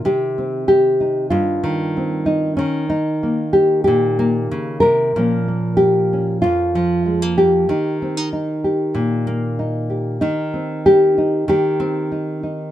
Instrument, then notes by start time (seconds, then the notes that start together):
nylon-string guitar
Already playing: D#3 D#4
0.05 C3 G4
0.38 C4
0.68 G4
1.00 D#4
1.30 G2 F4
1.64 D#3
1.97 C4
2.26 D#4
2.57 D#3 C#4
2.90 D#4
3.23 A#3
3.53 G4
3.84 A#2 G4
4.19 A#3
4.51 C#3
4.80 C3 A#4
5.16 A#2 F3 A#3 C#4
5.48 A#3
5.77 G4
6.13 C#4
6.42 F2 F4
6.75 F3
7.06 G#3
7.22 A#3
7.38 G4
7.69 D#3 D#4
8.02 C4
8.17 D#4
8.33 D#4
8.64 G4
8.95 A#2
9.27 A#3
9.59 D#4
9.90 G4
10.21 D#3 D#4
10.54 C4
10.86 G4
11.18 D#4
11.48 D#3 G4
11.80 C4
12.12 D#4
12.43 D#4